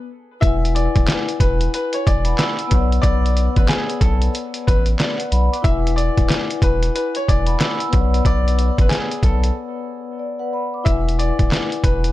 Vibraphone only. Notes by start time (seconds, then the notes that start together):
0.40 E4 B4
0.45 F#5 G#5
2.06 G#5
2.25 F#5 B5
2.38 B5 E6
2.60 B5 E6
2.67 B3 B4
2.72 C#5 F#5
2.78 D5
4.98 D5
5.18 B4 F#5
5.31 F#5 B5
5.52 D6
5.62 E4 B4
5.67 F#5 G#5
7.27 G#5
7.46 F#5 B5
7.59 E6
7.81 B5 E6
7.88 B3 B4
7.93 C#5 F#5
7.99 D5
10.19 D5
10.39 B4 F#5
10.53 F#5 B5
10.74 D6
10.84 E4 B4
10.88 F#5 G#5